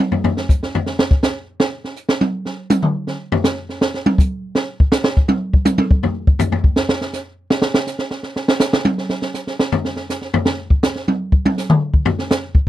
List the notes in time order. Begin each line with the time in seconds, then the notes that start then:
0.12 floor tom
0.24 floor tom
0.37 snare
0.49 kick, hi-hat pedal
0.63 snare
0.75 floor tom
0.86 snare
0.99 snare
1.11 kick
1.23 snare, hi-hat pedal
1.60 snare
1.84 snare
1.96 hi-hat pedal
2.09 snare
2.21 high tom
2.45 snare
2.70 hi-hat pedal, high tom
2.82 mid tom
3.07 snare
3.32 floor tom
3.44 snare, hi-hat pedal
3.69 snare
3.81 snare
3.94 snare
4.06 high tom
4.18 kick, hi-hat pedal
4.55 snare
4.80 kick
4.92 snare, hi-hat pedal
5.04 snare
5.17 kick
5.28 high tom
5.53 kick
5.65 hi-hat pedal, high tom
5.78 high tom
5.91 kick
6.03 floor tom
6.27 kick
6.39 floor tom, hi-hat pedal
6.52 floor tom
6.64 kick
6.76 snare
6.89 snare
7.01 snare
7.13 snare, hi-hat pedal
7.50 snare
7.62 snare
7.74 snare
7.87 snare, hi-hat pedal
7.99 snare
8.11 snare
8.23 snare
8.36 snare
8.48 snare
8.60 snare, hi-hat pedal
8.73 snare
8.85 high tom
8.98 snare
9.09 snare
9.22 snare
9.34 snare, hi-hat pedal
9.47 snare
9.59 snare
9.72 floor tom
9.85 snare
9.96 snare
10.10 snare, hi-hat pedal
10.21 snare
10.34 floor tom
10.45 snare
10.70 kick
10.83 snare, hi-hat pedal
10.95 snare
11.08 high tom
11.32 kick
11.45 high tom
11.57 snare, hi-hat pedal
11.70 mid tom
11.94 kick
12.05 floor tom
12.19 snare
12.31 snare, hi-hat pedal
12.55 kick